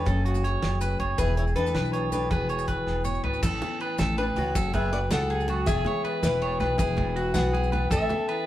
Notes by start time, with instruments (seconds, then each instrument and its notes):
0.05 upright bass F#1, clean electric guitar F#2 A4, trombone C#3, steel-string acoustic guitar C#4 G#4, muted clean electric guitar stroke, kick, closed hi-hat, high conga, maracas
0.24 clean electric guitar A3 F#4, closed hi-hat, low agogo
0.34 low conga, maracas
0.43 clean electric guitar F#3 C#5, snare, closed hi-hat
0.62 upright bass F#1, clean electric guitar C#4, snare, closed hi-hat, high conga, low agogo
0.81 clean electric guitar C#3 B4, closed hi-hat, low conga, maracas
0.99 upright bass F#1, clean electric guitar C#4 C#5, kick, closed hi-hat, low conga, low agogo
1.18 upright bass E1, clean electric guitar E2 B3 G#4, trombone E3, steel-string acoustic guitar E4 B4, kick, closed hi-hat, high conga, low conga, low agogo, maracas
1.28 low conga
1.37 trombone E3, steel-string acoustic guitar E4 C#5, closed hi-hat
1.47 maracas
1.56 upright bass E2, clean electric guitar E3 A4, trombone E3, steel-string acoustic guitar D4 B4, closed hi-hat, low agogo
1.66 low conga, maracas
1.74 upright bass B1, clean electric guitar G#4 B4, snare, closed hi-hat, high conga, low conga
1.85 maracas
1.93 clean electric guitar B2 C#5, closed hi-hat, low agogo
2.12 trombone D3, clean electric guitar B3, steel-string acoustic guitar D4 B4, closed hi-hat, low conga, low agogo, maracas
2.30 upright bass E1, clean electric guitar E2 B3 B4, trombone B2, steel-string acoustic guitar B3 G#4, kick, closed hi-hat, high conga
2.40 low conga
2.49 clean electric guitar G#3 C#5, closed hi-hat, high conga, low agogo, maracas
2.59 maracas
2.67 clean electric guitar E3 B4, kick, closed hi-hat, high conga, maracas
2.87 upright bass E1, clean electric guitar B3, snare, high conga, low agogo
3.04 clean electric guitar B2 C#5, mid tom, low conga, maracas
3.14 maracas
3.24 upright bass G#1, clean electric guitar B3 B4, floor tom, low conga, low agogo
3.34 maracas
3.42 upright bass A1, clean electric guitar A2 C#4 A4, kick, crash, high conga, low conga, low agogo, maracas
3.62 clean electric guitar B3, ride, low conga
3.79 clean electric guitar E3 B4, ride, low conga, low agogo
3.98 upright bass A1, clean electric guitar C#4 A4, snare, ride, high conga, low conga, maracas
4.17 clean electric guitar E2 B4, steel-string acoustic guitar D4 B4, ride, low agogo
4.36 upright bass C#2, steel-string acoustic guitar F#4 C#5, ride, low conga, low agogo
4.55 upright bass F#1, clean electric guitar F#2 C#4 A4, kick, ride, high conga, maracas
4.65 low conga
4.74 clean electric guitar A3 B4, steel-string acoustic guitar G#4 E5, kick, ride, low conga, low agogo
4.93 clean electric guitar F#3, steel-string acoustic guitar F#4 D5, ride
5.11 upright bass C#2, clean electric guitar A2 A4, steel-string acoustic guitar A4 F#5, snare, ride, high conga, low conga, low agogo, maracas
5.20 low conga
5.30 clean electric guitar G#4, muted clean electric guitar stroke, ride
5.40 maracas
5.48 clean electric guitar F#2 F#4, ride, low conga, low agogo
5.66 upright bass E1, clean electric guitar E2 B3 G#4, steel-string acoustic guitar G#4 E5, kick, ride, high conga, low conga, low agogo, maracas
5.85 clean electric guitar G#3 C#5, ride, low conga
6.04 clean electric guitar B4, ride, low conga, low agogo
6.23 upright bass E1, clean electric guitar B3, steel-string acoustic guitar E4 B4, snare, ride, high conga, low conga, maracas
6.42 clean electric guitar B2 C#5, ride, low conga, low agogo
6.60 upright bass B1, clean electric guitar B4, snare, ride, low conga, low agogo
6.69 low conga
6.78 upright bass E1, clean electric guitar E2 B3 G#4, steel-string acoustic guitar E4 B4, kick, ride, high conga, maracas
6.88 low conga
6.97 kick, ride, low conga, low agogo
7.16 clean electric guitar E3 F#4, ride
7.34 upright bass B1, clean electric guitar B3, steel-string acoustic guitar B4 F#5, snare, ride, high conga, low conga, low agogo, maracas
7.45 low conga
7.53 clean electric guitar B2 G#4, ride
7.63 maracas
7.72 clean electric guitar B4, ride, low conga, low agogo
7.91 upright bass A1, clean electric guitar C#4 A4, steel-string acoustic guitar A4 E5, muted clean electric guitar stroke, kick, ride, high conga, low conga, low agogo, maracas
8.09 clean electric guitar B3, ride, low conga
8.29 clean electric guitar E3 B4, ride, low conga, low agogo